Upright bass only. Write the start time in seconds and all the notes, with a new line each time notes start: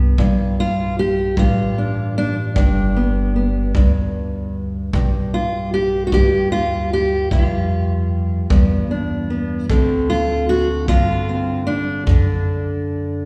Already playing: C2
0.18 B1
1.37 A1
2.56 G1
3.75 D2
4.93 B1
6.13 D2
7.31 F2
8.50 E2
9.70 D2
10.89 G2
12.07 F#2